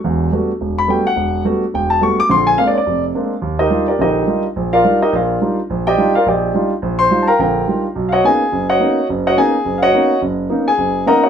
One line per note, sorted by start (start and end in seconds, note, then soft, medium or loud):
0.04 0.28 E1 medium
0.04 0.28 E2 medium
0.32 0.50 G3 soft
0.32 0.50 A3 soft
0.32 0.50 B3 soft
0.32 0.50 D4 soft
0.32 0.50 F#4 medium
0.61 0.85 E1 medium
0.79 0.89 B5 loud
0.88 1.06 G3 medium
0.88 1.06 A3 soft
0.88 1.06 B3 soft
0.88 1.06 D4 soft
0.88 1.06 F#4 medium
0.88 1.05 G5 medium
1.07 1.43 F#5 medium
1.16 1.40 E1 medium
1.45 1.63 G3 medium
1.45 1.63 A3 soft
1.45 1.63 B3 soft
1.45 1.63 D4 medium
1.45 1.63 F#4 medium
1.74 1.98 E1 medium
1.74 1.90 G5 medium
1.90 2.01 A5 medium
2.01 2.19 G3 medium
2.01 2.19 A3 soft
2.01 2.19 B3 soft
2.01 2.19 D4 soft
2.01 2.19 F#4 medium
2.01 2.18 C#6 medium
2.20 2.30 D6 loud
2.29 2.53 A#1 medium
2.29 2.53 D3 medium
2.29 2.46 C6 medium
2.47 2.58 G#5 loud
2.58 2.75 G#3 medium
2.58 2.76 A#3 soft
2.58 2.76 C4 soft
2.58 2.76 D4 medium
2.58 2.67 F5 medium
2.67 2.76 D5 medium
2.73 2.75 C#5 medium
2.78 3.03 D5 medium
2.87 3.10 F1 medium
3.15 3.32 G#3 soft
3.15 3.32 A#3 soft
3.15 3.33 C4 soft
3.15 3.32 D4 medium
3.42 3.66 D#2 medium
3.59 3.69 D#4 medium
3.59 3.86 G4 medium
3.59 3.86 A#4 medium
3.59 3.85 D#5 medium
3.70 3.88 G3 medium
3.70 3.88 D4 soft
3.70 3.88 D#4 soft
3.70 3.89 F4 medium
3.88 3.99 D4 medium
3.88 3.99 G4 medium
3.88 3.99 A#4 medium
3.88 3.99 D5 medium
3.99 4.23 A#1 medium
3.99 4.23 D3 medium
3.99 4.26 D#4 medium
3.99 4.42 G4 medium
3.99 4.42 A#4 medium
3.99 4.42 D#5 medium
4.27 4.45 G3 medium
4.27 4.45 D4 soft
4.27 4.45 D#4 soft
4.27 4.45 F4 soft
4.56 4.80 A#1 medium
4.73 4.83 F4 medium
4.73 4.99 A#4 medium
4.73 4.99 D5 medium
4.73 4.99 F5 medium
4.84 5.02 G3 soft
4.84 5.02 D4 soft
4.84 5.01 D#4 soft
4.84 5.02 F4 medium
5.03 5.13 D#4 medium
5.03 5.13 G4 medium
5.03 5.13 A#4 medium
5.03 5.13 D#5 medium
5.13 5.36 A#1 medium
5.13 5.40 F4 medium
5.13 5.56 A#4 medium
5.13 5.56 D5 medium
5.13 5.56 F5 medium
5.41 5.58 G3 soft
5.41 5.59 D4 soft
5.41 5.59 D#4 soft
5.41 5.59 F4 medium
5.70 5.94 A#1 medium
5.87 6.13 G4 medium
5.87 6.13 D5 medium
5.87 6.13 D#5 medium
5.87 6.13 G5 loud
5.98 6.15 G3 medium
5.98 6.16 D4 soft
5.98 6.15 D#4 soft
5.98 6.15 F4 medium
6.15 6.26 F4 medium
6.15 6.26 A#4 medium
6.15 6.26 D5 medium
6.15 6.26 F5 medium
6.26 6.50 A#1 medium
6.26 6.69 G4 medium
6.26 6.69 D5 medium
6.26 6.69 D#5 medium
6.26 6.69 G5 medium
6.54 6.72 G3 medium
6.54 6.72 D4 soft
6.54 6.72 D#4 soft
6.54 6.72 F4 medium
6.82 7.06 A#1 medium
6.99 7.25 C5 medium
6.99 7.25 C6 loud
7.11 7.28 G3 soft
7.11 7.29 D4 soft
7.11 7.29 D#4 soft
7.11 7.29 F4 medium
7.23 7.25 A5 medium
7.27 7.39 A#4 medium
7.27 7.39 F5 medium
7.27 7.39 G5 medium
7.27 7.38 A#5 medium
7.39 7.63 A#1 medium
7.39 7.63 D3 medium
7.39 7.81 A#4 medium
7.39 7.82 F5 medium
7.39 7.81 G5 medium
7.39 7.81 A#5 medium
7.68 7.85 G3 soft
7.68 7.85 D4 soft
7.68 7.85 D#4 soft
7.68 7.85 F4 medium
7.95 8.19 B1 medium
8.09 8.10 F5 medium
8.09 8.23 F#5 medium
8.13 8.24 F#4 medium
8.13 8.24 C#5 medium
8.13 8.24 D#5 medium
8.24 8.41 A#3 medium
8.24 8.41 B3 medium
8.24 8.41 C#4 soft
8.24 8.42 D#4 medium
8.24 8.66 G#4 medium
8.24 8.66 G#5 loud
8.52 8.76 F#1 medium
8.70 9.06 F#4 medium
8.70 9.06 C#5 medium
8.70 9.06 D#5 medium
8.70 9.06 F#5 medium
8.80 8.98 A#3 medium
8.80 8.98 B3 soft
8.80 8.98 C#4 soft
8.80 8.98 D#4 medium
9.09 9.33 F#1 medium
9.27 9.37 F#4 medium
9.27 9.37 C#5 medium
9.27 9.37 D#5 medium
9.27 9.37 F#5 loud
9.37 9.54 A#3 medium
9.37 9.55 B3 medium
9.37 9.55 C#4 soft
9.37 9.55 D#4 medium
9.37 9.79 G#4 medium
9.37 9.79 G#5 medium
9.65 9.89 F#1 medium
9.78 9.80 F5 medium
9.82 10.19 F#4 medium
9.82 10.19 C#5 medium
9.82 10.19 D#5 medium
9.82 10.19 F#5 loud
9.93 10.11 A#3 medium
9.93 10.11 B3 soft
9.93 10.11 C#4 soft
9.93 10.11 D#4 medium
10.22 10.45 F#1 medium
10.50 10.67 A#3 medium
10.50 10.67 B3 soft
10.50 10.67 C#4 soft
10.50 10.68 D#4 medium
10.68 11.04 G#4 medium
10.68 11.04 G#5 medium
10.78 11.02 F#1 medium
11.06 11.24 A#3 medium
11.06 11.24 B3 soft
11.06 11.24 C#4 medium
11.06 11.24 D#4 medium
11.06 11.23 A#4 medium
11.06 11.22 D#5 medium
11.06 11.22 F#5 medium
11.06 11.23 A#5 medium
11.23 11.29 F#4 medium
11.23 11.29 C#5 medium
11.23 11.29 D#5 medium
11.23 11.29 F#5 medium